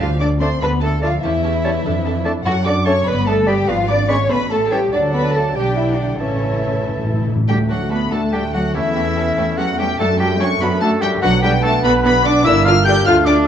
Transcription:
0.00 D2 D3 F3 F4 F5 A5
0.20 D4 A4 D5 A5 D6
0.40 A3 C4 D4 A4 C5 D5 A5 C6
0.61 D2 B3 D4 A4 B4 A5 B5
0.81 A3 D4 A4 A5
1.01 F3 A3 D4 F4 A4 D5 F5 A5
1.22 E2 E3 C#4 E4 G4 E5 A5
1.43 C#4 G4 A5
1.64 G3 C#4 G4 C#5 A5
1.84 F2 D4 A4 A5
2.04 D4 A4 A5
2.25 A3 D4 A4 D5 A5
2.45 F#2 F#3 C#4 F#4 A4 F#5
2.65 C#4 D4 A4 D5 F#5 D6
2.85 A3 C#4 A4 C#5 F#5 A5 C#6
3.06 G1 B3 B4 D5 B5
3.26 A3 B3 A4 B4 D5 A5
3.47 G3 B3 G4 B4 D5 G5 B5
3.68 G#1 F3 B3 F4 B4 D5 F5
3.88 B3 D4 B4 D5 D6
4.08 G#3 B3 C#4 B4 C#5 D5 B5 C#6
4.29 A1 B3 C#4 A4 B4 E5 B5
4.50 A3 C#4 A4 E5 A5
4.71 E3 G3 C#4 G4 A4 C#5 E5 G5 A5
4.92 D2 D3 F#3 D4 A4 D5 F#5 A5
5.13 B3 B4 B5
5.35 A3 A4 A5
5.55 B1 G3 D4 G4 D5 G5
5.77 E3 E4 E5
5.87 F#5
5.98 D3 D4 D5
6.13 D4
6.19 A1 A2 C#3 E3 C#4 E4 A4 C#5 E5 A5
6.28 A2
6.35 A2
6.44 A2
6.51 A2
6.59 A2
6.66 A2
6.73 A2
6.81 A2
6.89 A2
6.97 A2
7.04 A2
7.12 A2
7.20 A2
7.27 A2
7.35 A2
7.48 D2 D3 G3 A3 D4 F#4 G4 A4 G5
7.69 F#3 A3 D4 F#4 A4 F#5
7.90 A3 B3 D4 F#4 A4 B4 B5
8.11 D2 A3 D4 F#4 A4 A5
8.32 G3 A3 D4 F#4 G4 A4 G5
8.53 F#3 A3 D4 F#4 A4 F#5
8.74 E2 E3 A3 C#4 E4 G4 A4 E5
8.95 A3 C#4 G4 A4
9.16 A3 C#4 G4 A4
9.37 E2 A3 C#4 G4 A4
9.57 F#3 A3 C#4 F#4 G4 A4 F#5
9.78 G3 A3 C#4 G4 A4 G5
9.98 F#2 F#3 A3 D4 F#4 A4 A5
10.19 F#3 G3 D4 F#4 G4 A4 G5
10.40 F#3 C#4 D4 F#4 A4 C#5 C#6
10.59 F#2 F#3 B3 D4 F#4 A4 B4 B5
10.81 F#3 A3 D4 F#4 A4 A5
11.00 F#3 G3 D4 F#4 G4 A4 G5
11.21 B1 D3 F#3 B3 D4 F#4 B4 F#5
11.42 D3 G3 D4 F#4 G4 B4 G5
11.62 D3 A3 D4 F#4 A4 B4 A5
11.82 B1 D3 B3 D4 F#4 B4 B5
12.03 D3 B3 D4 F#4 B4 B5
12.23 D3 D4 F#4 B4 D5 D6
12.44 G1 D3 A#3 D4 E4 A#4 D5 E5 E6
12.65 D3 D4 F4 A#4 D5 F5 F6
12.85 D3 D4 G4 A#4 D5 G5 G6
13.05 D2 D3 A3 D4 F4 A4 D5 F5 F6
13.25 D3 D4 A4 D5 D6

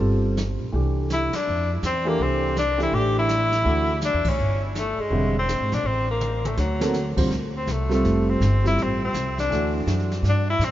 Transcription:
Already playing: G3 C4 F4 A4
0.00 G1, brush sweep
0.37 snare, hi-hat pedal
0.60 A#1
0.72 C2 E3 A3 D4 G4, brush sweep
1.10 E4, snare, hi-hat pedal
1.33 D4, muted upright bass stroke, snare, ride
1.46 F2, brush sweep
1.82 E2 C4, snare, hi-hat pedal
2.05 E3 A3 A#3 D4 G4
2.19 C2 C4, brush sweep
2.56 D4, snare, hi-hat pedal
2.78 E3 A3 D4 G4, snare
2.83 E4
2.92 A1 G4, brush sweep
3.19 E4
3.29 snare, hi-hat pedal
3.52 snare
3.64 D2 E3 A3 D4 F#4, brush sweep
4.01 D4, snare, hi-hat pedal
4.14 E2
4.24 D2, kick, crash
4.29 C#4
4.38 G1, brush sweep
4.75 A3, snare, hi-hat pedal
4.98 G#3, muted upright bass stroke
5.10 E1 D3 G3 C4 E4, brush sweep
5.39 C4
5.48 snare, hi-hat pedal
5.60 G#1
5.72 A#1 D4, snare
5.84 A1 C4, brush sweep
6.11 A#3
6.21 hi-hat pedal, mid tom
6.45 A3, mid tom
6.57 D2 F#3, snare
6.80 A#3 C4 F#4 A4, snare
6.93 snare, hi-hat pedal
7.16 D#2 D3 G3 C4 F4 C5, kick, crash
7.30 D2, brush sweep, snare
7.57 C4
7.66 C2, snare, hi-hat pedal
7.72 A3
7.89 G3 C4 F4 A4, snare
7.94 A3
8.04 F1, brush sweep, snare
8.30 C4
8.40 G1, snare, hi-hat pedal
8.64 G3 C4 E4 F4 C5, snare
8.78 A1, brush sweep, snare
8.82 C4
9.04 C4
9.14 C2, snare, hi-hat pedal
9.38 D4, snare
9.50 D2 E3 A3 D4 F#4, brush sweep, snare
9.86 F#2, snare, hi-hat pedal
9.99 snare
10.11 snare
10.23 G2, brush sweep, snare
10.29 D4
10.50 E4
10.59 A2, snare, hi-hat pedal
10.65 C4

